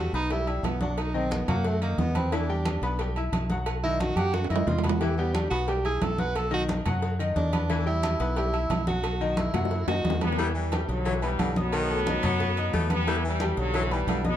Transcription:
0.00 F#4
0.13 B1 B3 D#4 B4 B5, cowbell
0.30 G3 E4 G4 G5, cowbell, high conga, low agogo
0.47 G3 E4 E5 E6, high conga, low agogo
0.63 B1 B3, cowbell, high conga, low timbale, low agogo
0.81 F#3 D4 F#4 F#5, cowbell, high conga
0.98 D#4, cowbell, high conga, low agogo
1.14 D#3 C4 D#4 D#5, high conga
1.31 B3, cowbell, high conga, low agogo
1.48 F#2 F#3 A#3 F#4 F#5, cowbell, high conga, low conga, low agogo
1.65 A3, cowbell, high conga
1.81 D#3 A#3 D#4 D#5, high conga, low agogo
1.98 E2 B3, cowbell, high conga, low timbale
2.15 B3 C4 B4 B5, cowbell, high conga, low agogo
2.32 E3 D4 E4 E5, cowbell, high conga, low agogo
2.49 G3 G4 G5, high conga
2.65 cowbell, high conga, low agogo
2.82 B1 B3 B4 B5, cowbell
2.99 G3 G4 G5, cowbell, high conga, low agogo
3.16 E4 E5 E6, high conga, low agogo
3.32 B1, cowbell, high conga, low agogo
3.50 F#3 F#4 F#5, cowbell, high conga
3.66 cowbell, high conga, low agogo
3.84 D#3 D#4 E4 D#5, high conga
4.00 F#4, cowbell, high conga, low agogo
4.16 F#2 F#3 F#4 G4 F#5, cowbell, high conga, low agogo
4.34 F#4, cowbell, high conga, high timbale
4.44 high timbale
4.50 F#2 D#3 D#4 E4 D#5, low agogo
4.56 low timbale
4.67 E2 F4, cowbell, low conga, low timbale
4.79 low timbale
4.83 B3 F#4 B4 B5, cowbell, low conga, low agogo
4.89 low timbale
5.00 E3 E4 G4 E5, cowbell, high conga, low agogo
5.18 G3 B3 G4 G5, high conga
5.34 D4, cowbell, high conga, low agogo
5.50 B1 B3 F#4 B4 B5, cowbell
5.68 G3 G4 G5, cowbell, high conga, low agogo
5.85 E4 G#4 E5 E6, high conga, low agogo
6.01 B1 A4, cowbell, high conga, low timbale, low agogo
6.18 F#3 F#4 B4 F#5, cowbell, high conga
6.35 A4, cowbell, high conga, low agogo
6.51 D#3 D#4 F#4 D#5, high conga
6.69 cowbell, high conga, low agogo
6.86 F#2 F#3 F#4 F#5, cowbell, high conga, low conga, low agogo
7.02 cowbell, high conga
7.19 D#3 D#4 D#5, high conga, low agogo
7.36 E2 D4, cowbell, high conga
7.53 B3 B4 B5, cowbell, high conga, low agogo
7.70 E3 E4 E5, cowbell, high conga, low agogo
7.86 G3 E4 G4 G5, high conga
8.03 cowbell, high conga, low agogo
8.20 B1 B3 B4 B5, cowbell
8.36 G3 E4 G4 G5, cowbell, high conga, low agogo
8.53 E4 E5 E6, high conga, low agogo
8.70 B1, cowbell, high conga, low timbale, low agogo
8.87 F#3 F#4 F#5, cowbell, high conga
9.04 cowbell, high conga, low agogo
9.20 D#3 D#4 D#5, high conga
9.37 E4, cowbell, high conga, low agogo
9.54 F#2 F#3 F#4 F#5, cowbell, high bongo, high conga, low conga, low agogo
9.65 high bongo
9.71 cowbell, high conga
9.87 F#2 D#3 D#4 F#4 D#5, high bongo, high conga, high timbale, low agogo
10.05 E2, cowbell, high conga, low timbale
10.10 low bongo
10.21 G3 B3 B4 B5, cowbell, high conga, low timbale, low agogo
10.33 low bongo
10.38 E3 G3 E4 E5, cowbell, high conga, low agogo
10.55 E3 G3, high conga
10.72 G3 G4 G5, cowbell, high conga, low agogo
10.88 B1 D3 F#3, cowbell
11.05 E3 F#3 E4 E5, cowbell, high conga, low agogo
11.22 E3 G3 B3 B4 B5, high conga, low agogo
11.39 B1 D3, cowbell, high conga, low timbale, low agogo
11.56 F#3 B3 D#4 D#5 D#6, cowbell, high conga
11.72 D#3, cowbell, high conga, low agogo
11.90 A3 A4 A5, high conga
12.06 D#3 D#4 D#5, cowbell, high conga, low agogo
12.22 F#2 F#3 F#4 F#5, cowbell, high conga, low conga, low agogo
12.40 cowbell, high conga, low conga
12.57 D#4 D#5 D#6, high conga, low agogo
12.73 E2 A3, cowbell, high conga
12.90 G3 B3 B4 B5, cowbell, high conga, low agogo
13.07 E3 G3 E4 E5, cowbell, high conga, low agogo
13.24 E3 G3, high conga
13.40 G3 G4 G5, cowbell, high conga, low agogo
13.57 B1 D3 F#3, cowbell
13.74 E3 F#3 E4 E5, cowbell, high conga, low agogo
13.91 E3 G3 B3 B4 B5, high conga, low agogo
14.07 B1 D3, cowbell, high conga, low timbale, low agogo
14.24 F#3 B3 D#4 D#5 D#6, cowbell, high conga

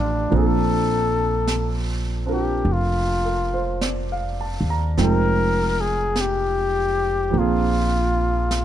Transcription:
Already playing: A1 D#3 A3 C4 D4 G4
0.30 A#1 F3 A#3 C4 D4, brush sweep
0.35 A4
1.47 brush sweep, snare, hi-hat pedal
2.26 C4 D4 F4 A#4
2.33 G4
2.65 F1, brush sweep
2.72 F4
3.25 A#4
3.54 C5
3.81 D5, brush sweep, snare, hi-hat pedal
4.12 F5
4.41 A5
4.61 D#2
4.70 A#5
4.97 F1 F3 G#3 C4 D#4 G5, brush sweep, snare
5.03 A#4
5.81 G#4
6.16 brush sweep, snare, hi-hat pedal
6.21 G4
7.30 A#1 F3 A#3, brush sweep
7.35 C4 D4 F4
7.40 G#4
8.51 brush sweep, snare, hi-hat pedal

